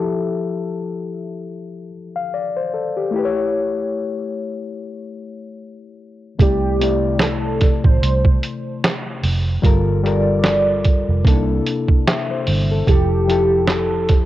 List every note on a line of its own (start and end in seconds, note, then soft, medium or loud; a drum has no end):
0.00 3.08 F3 medium
0.00 3.09 E4 medium
0.00 1.89 G4 medium
0.00 1.90 A4 medium
0.00 0.11 E5 medium
2.16 2.32 F5 medium
2.34 2.56 D5 medium
2.57 2.73 C5 medium
2.74 2.96 A4 soft
2.97 3.15 G4 medium
3.11 6.33 A3 medium
3.11 6.34 E4 medium
3.16 6.35 G4 medium
3.16 3.24 B4 medium
3.25 6.40 C#5 medium
6.38 7.80 C2 loud
6.38 6.66 C3 medium
6.38 6.67 A3 medium
6.38 6.68 E4 medium
6.38 7.17 G4 loud
6.38 6.68 D5 medium
6.38 kick loud
6.38 closed hi-hat medium
6.80 7.85 C3 medium
6.80 7.86 A3 medium
6.80 7.87 E4 medium
6.80 7.87 D5 medium
6.80 closed hi-hat medium
7.19 7.81 A4 loud
7.19 snare loud
7.19 clap medium
7.19 closed hi-hat medium
7.61 kick medium
7.61 snare soft
7.61 closed hi-hat medium
7.84 7.99 A1 medium
7.84 8.79 C5 medium
7.84 kick loud
8.02 8.35 C2 medium
8.02 closed hi-hat medium
8.25 kick loud
8.43 closed hi-hat medium
8.84 snare loud
8.84 clap medium
8.84 closed hi-hat medium
9.23 9.56 F1 loud
9.23 open hi-hat medium
9.62 11.04 G1 loud
9.62 9.91 G3 medium
9.62 9.91 F4 medium
9.62 9.92 A4 medium
9.62 9.93 A#4 medium
9.62 kick loud
9.62 closed hi-hat medium
10.04 11.09 G3 medium
10.04 11.10 F4 medium
10.04 11.10 A4 medium
10.04 11.11 A#4 medium
10.04 11.45 D5 loud
10.04 closed hi-hat medium
10.44 snare loud
10.44 clap medium
10.44 closed hi-hat medium
10.85 kick medium
10.85 closed hi-hat medium
11.09 11.23 F1 loud
11.24 11.59 C2 loud
11.24 12.56 C3 medium
11.24 12.56 A#3 medium
11.24 12.57 D4 medium
11.24 11.34 D#4 medium
11.24 12.08 A4 loud
11.24 kick loud
11.24 closed hi-hat medium
11.34 12.60 E4 medium
11.67 closed hi-hat medium
11.89 kick medium
12.07 12.29 E5 medium
12.07 snare loud
12.07 clap medium
12.07 closed hi-hat medium
12.31 12.69 C5 medium
12.47 12.81 G1 medium
12.47 open hi-hat soft
12.71 12.90 A4 medium
12.87 14.26 F1 loud
12.87 13.15 F3 medium
12.87 13.16 E4 medium
12.87 13.72 G4 loud
12.87 13.17 G4 medium
12.87 kick loud
12.87 closed hi-hat medium
12.91 13.17 A4 medium
13.28 14.26 F3 medium
13.28 14.26 E4 medium
13.28 14.26 G4 medium
13.28 14.26 A4 medium
13.28 closed hi-hat medium
13.67 14.26 A4 medium
13.67 snare loud
13.67 clap medium
13.67 closed hi-hat medium
14.09 kick loud
14.09 snare soft
14.09 closed hi-hat medium